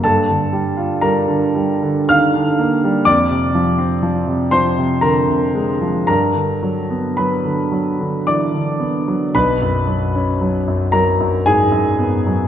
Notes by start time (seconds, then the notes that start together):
0.04 G2 A4 A5
0.30 D3
0.53 G3
0.77 F4
1.01 G3 A#4 A#5
1.28 D3
1.55 G3
1.83 D3
2.09 D#3 F5 F6
2.35 D3
2.59 A#3
2.84 G3
3.05 F2 D5 D6
3.31 C3
3.55 F3
3.78 C4
4.03 F3
4.28 C3
4.51 F3 C5 C6
4.78 C3
5.01 D3 A#4 A#5
5.28 C3
5.55 G#3
5.81 F3
6.07 G2 A#4 A#5
6.35 D3
6.63 F#3
6.90 B3
7.17 F#3 B4 B5
7.45 D3
7.72 F#3
8.00 D3
8.27 E3 D5 D6
8.54 D3
8.80 B3
9.08 F#3
9.35 B1 B4 B5
9.62 F#2
9.87 F#3
10.15 C#4
10.41 F#3
10.68 F#2
10.92 F#3 A#4 A#5
11.20 F#2
11.46 G#2 G#4 G#5
11.72 F#2
11.99 B3
12.27 F#3